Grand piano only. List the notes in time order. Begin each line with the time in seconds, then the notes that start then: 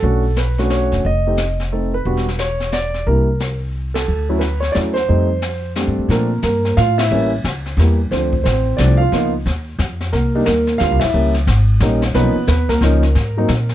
Already playing: A4
0.03 A3 C#4 D4 F#4
0.38 B4
0.59 A3 C#4 D4 F#4
0.71 C#5
1.06 D#5
1.27 A3 C4 D#4 G4
1.72 A3 C4 D#4 A4
1.94 B4
2.06 G3 B3 D4 F#4
2.40 C#5
2.73 D5
3.07 G3 A#3 D4 E4 A#4
3.94 A4
4.29 F#3 A3 C#4 E4
4.39 B4
4.60 C#5
4.72 F#3 A3 C#4 E4 D5
4.94 C5
5.08 G3 A3 C4 D#4
5.76 G3 A3 C4 D4
6.10 F3 A3 A#3 C4 D4 A#4
6.44 A#3 A#4
6.77 F4 F5
6.98 E4 E5
7.11 E3 G3 A#3 C#4
7.79 E3 G3 A#3 E4
8.11 F3 A3 C4 D4 C5
8.44 C4 C5
8.77 F3 A3 C4 D4 D5
8.97 F4 F5
9.13 F3 A#3 B3 D#4
10.13 A#3 A#4
10.35 G3 A#3 D4 D#4
10.45 A#3 A#4
10.78 G3 A#3 D4 F4 F5
11.00 E4 E5
11.14 G3 A#3 C#4 E4
11.82 G3 A#3 C#4 D#4
12.15 F3 A#3 B3 C#4 D#4 B4
12.48 B3 B4
12.69 A#3 A#4
12.83 F3 A#3 C#4 D#4
13.37 F#3 A#3 C4 D#4